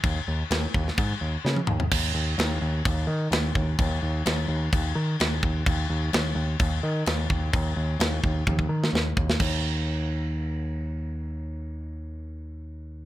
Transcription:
0.04 D#2, kick, crash
0.28 D#2
0.50 D#2, snare, crash
0.74 D#2, kick
0.88 snare
0.98 G#2, kick, crash
1.21 D#2
1.45 C#3, snare
1.56 high tom
1.67 D#2, mid tom
1.80 floor tom
1.91 D#2, kick, crash
2.14 D#2
2.38 D#2, snare, crash
2.61 D#2
2.85 D#2, kick, crash
3.07 D#3
3.31 D#2, snare, crash
3.55 D#2, kick
3.79 D#2, kick, crash
4.02 D#2
4.26 D#2, snare, crash
4.48 D#2
4.72 D#2, kick, crash
4.95 D#3
5.20 D#2, snare, crash
5.43 D#2, kick
5.66 D#2, kick, crash
5.89 D#2
6.13 D#2, snare, crash
6.35 D#2
6.59 D#2, kick, crash
6.83 D#3
7.06 D#2, snare, crash
7.30 D#2, kick
7.53 D#2, kick, crash
7.76 D#2
7.99 D#2, snare, crash
8.24 D#2, kick
8.47 D#2, kick, high tom
8.59 kick
8.69 D#3
8.84 snare
8.93 D#2, snare
9.17 D#2, kick
9.30 snare
9.40 D#2, kick, crash

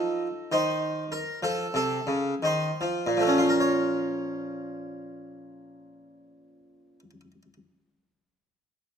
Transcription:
Already playing: F3 D#4 A4
0.52 D#3 C5
1.12 A#4
1.43 F3 A4
1.74 C3 A4
2.07 C#3
2.43 D#3 C5
2.81 F3
3.07 A#2
3.17 F3 A3
3.27 C#4
3.38 F4
3.49 A#4
3.60 C#5

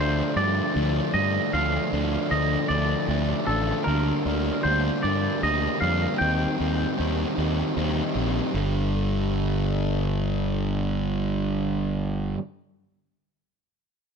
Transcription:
Already playing: D2 D3 F3
0.00 A3 D4 C5
0.36 G2 F3 A3 D4 D5
0.74 D2 D3 F3 A3 D4
1.14 G2 F3 A3 D4 D#5
1.53 D2 D3 F3 A3 D4 F5
1.92 D2 F3 A3 D4
2.31 D2 D3 F3 A3 D4 D#5
2.68 D2 A3 D4 D5
2.73 F3
3.08 D2 D3 F3 A3 D4
3.47 A1 F3 A3 D4 A4
3.84 D2 D3 G3 A#3 D4 A#4
4.25 D2 G3 A#3 D4
4.63 D2 D3 G3 A#3 D4 C5
5.03 G2 G3 A#3 D4 D5
5.41 D2 D3 G3 A#3 D4 D#5
5.81 F2 G3 A#3 D4 F5
6.18 D#2 D#3 G3 C4 D#4 G5
6.58 D#2 G3 C4 D#4
6.96 D#2 D#3 G3 C4 D#4
7.35 D#2 G3 C4 D#4
7.75 D#2 D#3 G3 C4 D#4
8.15 A#1 G3 C4 D#4
8.52 G1 G2 D3 G3

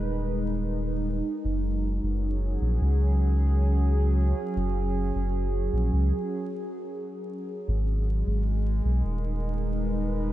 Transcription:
Already playing: D#1 G#3 D#4 A#4 B4
1.44 F#1 F#3
1.70 C#4 G#4
2.03 F#1
2.61 A#1
2.81 C#2
4.56 F#1
5.15 F#1
5.73 A#1
5.93 C#2
7.68 G#1 G#3
8.27 G#1
8.42 D#4
8.50 A#4
8.85 B1
9.04 D#1
9.42 B4

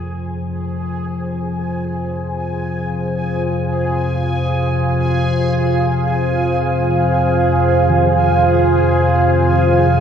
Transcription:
Already playing: F2 C3 F3 F4 G#4 C5 G#5
1.23 F5
7.89 D#3

